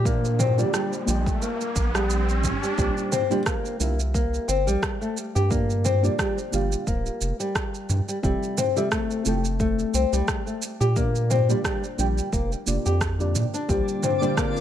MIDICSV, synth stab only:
0, 0, Header, 1, 2, 480
1, 0, Start_track
1, 0, Tempo, 681818
1, 38, Time_signature, 4, 2, 24, 8
1, 10282, End_track
2, 0, Start_track
2, 0, Title_t, "Synth stab"
2, 0, Program_c, 0, 62
2, 0, Control_c, 0, 64, 127
2, 31, Note_on_c, 0, 58, 98
2, 33, Note_on_c, 0, 62, 88
2, 38, Note_on_c, 0, 65, 88
2, 42, Note_on_c, 0, 67, 87
2, 45, Note_on_c, 0, 74, 98
2, 47, Control_c, 0, 64, 0
2, 156, Control_c, 0, 64, 127
2, 375, Note_off_c, 0, 58, 0
2, 376, Note_off_c, 0, 62, 0
2, 378, Note_off_c, 0, 65, 0
2, 380, Note_off_c, 0, 67, 0
2, 382, Note_off_c, 0, 74, 0
2, 403, Note_on_c, 0, 58, 103
2, 405, Note_on_c, 0, 62, 95
2, 410, Note_on_c, 0, 65, 87
2, 414, Note_on_c, 0, 67, 83
2, 417, Note_on_c, 0, 74, 107
2, 728, Note_off_c, 0, 58, 0
2, 730, Note_off_c, 0, 62, 0
2, 732, Note_off_c, 0, 65, 0
2, 734, Note_off_c, 0, 67, 0
2, 736, Note_off_c, 0, 74, 0
2, 742, Note_on_c, 0, 58, 84
2, 748, Note_on_c, 0, 62, 79
2, 755, Note_on_c, 0, 65, 76
2, 762, Note_on_c, 0, 67, 73
2, 770, Note_on_c, 0, 79, 89
2, 1924, Note_off_c, 0, 58, 0
2, 1927, Note_off_c, 0, 62, 0
2, 1931, Note_off_c, 0, 65, 0
2, 1934, Note_off_c, 0, 67, 0
2, 1938, Note_off_c, 0, 79, 0
2, 1951, Note_on_c, 0, 58, 92
2, 1954, Note_on_c, 0, 62, 82
2, 1958, Note_on_c, 0, 65, 82
2, 1961, Note_on_c, 0, 67, 90
2, 1966, Note_on_c, 0, 72, 104
2, 1968, Control_c, 0, 64, 0
2, 2110, Control_c, 0, 64, 127
2, 2295, Note_off_c, 0, 58, 0
2, 2297, Note_off_c, 0, 62, 0
2, 2299, Note_off_c, 0, 65, 0
2, 2300, Note_off_c, 0, 67, 0
2, 2302, Note_off_c, 0, 72, 0
2, 2322, Note_on_c, 0, 58, 95
2, 2326, Note_on_c, 0, 62, 86
2, 2328, Note_on_c, 0, 65, 90
2, 2332, Note_on_c, 0, 67, 87
2, 2335, Note_on_c, 0, 72, 108
2, 2648, Note_off_c, 0, 58, 0
2, 2650, Note_off_c, 0, 62, 0
2, 2651, Note_off_c, 0, 65, 0
2, 2653, Note_off_c, 0, 67, 0
2, 2655, Note_off_c, 0, 72, 0
2, 2672, Note_on_c, 0, 62, 78
2, 2679, Note_on_c, 0, 65, 74
2, 2686, Note_on_c, 0, 67, 79
2, 2693, Note_on_c, 0, 76, 94
2, 3849, Note_off_c, 0, 62, 0
2, 3853, Note_off_c, 0, 65, 0
2, 3856, Note_off_c, 0, 67, 0
2, 3859, Note_off_c, 0, 76, 0
2, 3868, Note_on_c, 0, 58, 94
2, 3872, Note_on_c, 0, 62, 87
2, 3876, Note_on_c, 0, 65, 84
2, 3880, Note_on_c, 0, 67, 90
2, 3882, Note_on_c, 0, 74, 100
2, 3886, Control_c, 0, 64, 0
2, 3999, Control_c, 0, 64, 127
2, 4213, Note_off_c, 0, 58, 0
2, 4215, Note_off_c, 0, 62, 0
2, 4218, Note_off_c, 0, 65, 0
2, 4219, Note_off_c, 0, 67, 0
2, 4220, Note_off_c, 0, 74, 0
2, 4240, Note_on_c, 0, 58, 99
2, 4244, Note_on_c, 0, 62, 88
2, 4248, Note_on_c, 0, 65, 90
2, 4252, Note_on_c, 0, 67, 92
2, 4255, Note_on_c, 0, 74, 108
2, 4567, Note_off_c, 0, 58, 0
2, 4569, Note_off_c, 0, 62, 0
2, 4571, Note_off_c, 0, 65, 0
2, 4573, Note_off_c, 0, 67, 0
2, 4574, Note_off_c, 0, 74, 0
2, 4583, Note_on_c, 0, 58, 82
2, 4590, Note_on_c, 0, 62, 80
2, 4596, Note_on_c, 0, 65, 75
2, 4604, Note_on_c, 0, 67, 78
2, 4610, Note_on_c, 0, 77, 91
2, 5764, Note_off_c, 0, 58, 0
2, 5768, Note_off_c, 0, 62, 0
2, 5771, Note_off_c, 0, 65, 0
2, 5775, Note_off_c, 0, 67, 0
2, 5778, Note_off_c, 0, 77, 0
2, 5790, Note_on_c, 0, 60, 99
2, 5795, Note_on_c, 0, 64, 82
2, 5799, Note_on_c, 0, 65, 92
2, 5803, Note_on_c, 0, 69, 91
2, 5805, Note_on_c, 0, 76, 106
2, 5808, Control_c, 0, 64, 0
2, 5929, Control_c, 0, 64, 127
2, 6134, Note_off_c, 0, 60, 0
2, 6137, Note_off_c, 0, 64, 0
2, 6139, Note_off_c, 0, 65, 0
2, 6141, Note_off_c, 0, 69, 0
2, 6142, Note_off_c, 0, 76, 0
2, 6162, Note_on_c, 0, 60, 96
2, 6166, Note_on_c, 0, 64, 92
2, 6170, Note_on_c, 0, 65, 90
2, 6172, Note_on_c, 0, 69, 88
2, 6176, Note_on_c, 0, 76, 114
2, 6488, Note_off_c, 0, 60, 0
2, 6490, Note_off_c, 0, 64, 0
2, 6492, Note_off_c, 0, 65, 0
2, 6493, Note_off_c, 0, 69, 0
2, 6495, Note_off_c, 0, 76, 0
2, 6504, Note_on_c, 0, 60, 81
2, 6511, Note_on_c, 0, 64, 75
2, 6518, Note_on_c, 0, 65, 77
2, 6525, Note_on_c, 0, 69, 80
2, 6533, Note_on_c, 0, 79, 90
2, 7685, Note_off_c, 0, 60, 0
2, 7688, Note_off_c, 0, 64, 0
2, 7692, Note_off_c, 0, 65, 0
2, 7696, Note_off_c, 0, 69, 0
2, 7700, Note_off_c, 0, 79, 0
2, 7711, Note_on_c, 0, 58, 95
2, 7713, Note_on_c, 0, 62, 89
2, 7717, Note_on_c, 0, 65, 91
2, 7720, Note_on_c, 0, 67, 90
2, 7724, Note_on_c, 0, 74, 97
2, 7726, Control_c, 0, 64, 0
2, 7832, Control_c, 0, 64, 127
2, 8055, Note_off_c, 0, 58, 0
2, 8056, Note_off_c, 0, 62, 0
2, 8058, Note_off_c, 0, 65, 0
2, 8059, Note_off_c, 0, 67, 0
2, 8061, Note_off_c, 0, 74, 0
2, 8086, Note_on_c, 0, 58, 99
2, 8088, Note_on_c, 0, 62, 86
2, 8092, Note_on_c, 0, 65, 96
2, 8096, Note_on_c, 0, 67, 88
2, 8099, Note_on_c, 0, 74, 112
2, 8410, Note_off_c, 0, 58, 0
2, 8411, Note_off_c, 0, 62, 0
2, 8413, Note_off_c, 0, 65, 0
2, 8415, Note_off_c, 0, 67, 0
2, 8416, Note_off_c, 0, 74, 0
2, 8431, Note_on_c, 0, 58, 80
2, 8436, Note_on_c, 0, 62, 78
2, 8438, Note_on_c, 0, 65, 73
2, 8443, Note_on_c, 0, 67, 78
2, 8446, Note_on_c, 0, 79, 91
2, 8893, Note_off_c, 0, 58, 0
2, 8895, Note_off_c, 0, 62, 0
2, 8897, Note_off_c, 0, 65, 0
2, 8899, Note_off_c, 0, 67, 0
2, 8900, Note_off_c, 0, 79, 0
2, 8911, Note_on_c, 0, 58, 75
2, 8915, Note_on_c, 0, 62, 69
2, 8918, Note_on_c, 0, 65, 68
2, 8922, Note_on_c, 0, 67, 67
2, 8925, Note_on_c, 0, 74, 83
2, 9255, Note_off_c, 0, 58, 0
2, 9257, Note_off_c, 0, 62, 0
2, 9259, Note_off_c, 0, 65, 0
2, 9260, Note_off_c, 0, 67, 0
2, 9262, Note_off_c, 0, 74, 0
2, 9283, Note_on_c, 0, 58, 97
2, 9286, Note_on_c, 0, 62, 98
2, 9290, Note_on_c, 0, 65, 93
2, 9295, Note_on_c, 0, 67, 86
2, 9298, Note_on_c, 0, 74, 116
2, 9609, Note_off_c, 0, 58, 0
2, 9610, Note_off_c, 0, 62, 0
2, 9612, Note_off_c, 0, 65, 0
2, 9614, Note_off_c, 0, 67, 0
2, 9616, Note_off_c, 0, 74, 0
2, 9631, Note_on_c, 0, 58, 99
2, 9634, Note_on_c, 0, 62, 86
2, 9637, Note_on_c, 0, 65, 82
2, 9641, Note_on_c, 0, 67, 88
2, 9646, Note_on_c, 0, 72, 106
2, 9647, Control_c, 0, 64, 0
2, 9761, Control_c, 0, 64, 127
2, 9975, Note_off_c, 0, 58, 0
2, 9976, Note_off_c, 0, 62, 0
2, 9978, Note_off_c, 0, 65, 0
2, 9980, Note_off_c, 0, 67, 0
2, 9982, Note_off_c, 0, 72, 0
2, 10004, Note_on_c, 0, 58, 96
2, 10006, Note_on_c, 0, 62, 93
2, 10011, Note_on_c, 0, 65, 88
2, 10013, Note_on_c, 0, 67, 94
2, 10017, Note_on_c, 0, 72, 109
2, 10282, Note_off_c, 0, 58, 0
2, 10282, Note_off_c, 0, 62, 0
2, 10282, Note_off_c, 0, 65, 0
2, 10282, Note_off_c, 0, 67, 0
2, 10282, Note_off_c, 0, 72, 0
2, 10282, End_track
0, 0, End_of_file